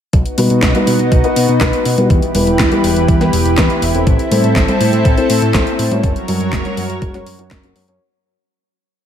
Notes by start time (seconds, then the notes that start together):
0.13 B1 B3 D#4 F#4, kick, closed hi-hat
0.26 closed hi-hat
0.38 B2 B3 D#4 F#4 B4, open hi-hat, high conga
0.50 B2, closed hi-hat
0.63 B1, kick, snare, clap, closed hi-hat
0.75 B3 D#4 F#4 B4, closed hi-hat, high conga
0.87 B2, open hi-hat
0.99 B2, closed hi-hat
1.12 B1, kick, closed hi-hat
1.24 B3 D#4 F#4 B4, closed hi-hat
1.36 B2, open hi-hat
1.49 B2, closed hi-hat
1.61 B1 B3 D#4 F#4 B4, kick, snare, clap, closed hi-hat
1.73 closed hi-hat
1.85 B2, open hi-hat
1.98 B2 B3 E4 G4 B4, closed hi-hat, high conga
2.10 E2 E3 E4 G4 B4, kick, closed hi-hat
2.22 closed hi-hat
2.35 E1 B3 E4 G4 B4, open hi-hat, high conga
2.47 E1, closed hi-hat
2.59 E2, kick, snare, clap, closed hi-hat
2.72 B3 E4 G4 B4, closed hi-hat, high conga
2.84 E1, open hi-hat
2.96 E1, closed hi-hat
3.08 E2, kick, closed hi-hat, high conga
3.21 B3 E4 G4 B4, snare, closed hi-hat
3.33 E1, open hi-hat
3.45 E1, closed hi-hat
3.58 E2 B3 E4 G4 B4, kick, snare, clap, closed hi-hat
3.70 closed hi-hat
3.82 E1, open hi-hat
3.94 E1 C4 E4 A4 C5, closed hi-hat
4.07 A1 C4 A4, kick, closed hi-hat
4.19 closed hi-hat
4.31 A2 C4 E4 A4 C5, open hi-hat, high conga
4.44 A2, closed hi-hat
4.56 A1, kick, snare, clap, closed hi-hat
4.68 C4 E4 A4 C5, closed hi-hat, high conga
4.81 A2, open hi-hat
4.93 A2, closed hi-hat
5.05 A1, kick, closed hi-hat
5.17 C4 E4 A4 C5, closed hi-hat
5.30 A2, open hi-hat
5.42 A2, closed hi-hat
5.54 A1 C4 E4 A4 C5, kick, snare, clap, closed hi-hat
5.67 closed hi-hat
5.79 A2, open hi-hat
5.91 A2 C#4 F#4 A#4 C#5, closed hi-hat, high conga
6.04 F#1 F#3 F#4 A#4 C#5, kick, closed hi-hat
6.16 closed hi-hat
6.28 F#2 C#4 F#4 A#4 C#5, open hi-hat, high conga
6.40 F#2, closed hi-hat
6.53 F#1, kick, snare, clap, closed hi-hat
6.65 C#4 F#4 A#4 C#5, closed hi-hat, high conga
6.77 F#2, open hi-hat
6.90 F#2, closed hi-hat
7.02 F#1, kick, closed hi-hat, high conga
7.14 C#4 F#4 A#4 C#5, snare, closed hi-hat
7.26 F#2, open hi-hat
7.39 F#2 C#4 F#4 A#4 C#5, closed hi-hat
7.51 F#1, kick, snare, clap, closed hi-hat
7.63 C#4 F#4 A#4 C#5, closed hi-hat
7.76 F#2, open hi-hat
7.88 F#2 C#4 F#4 A#4 C#5, closed hi-hat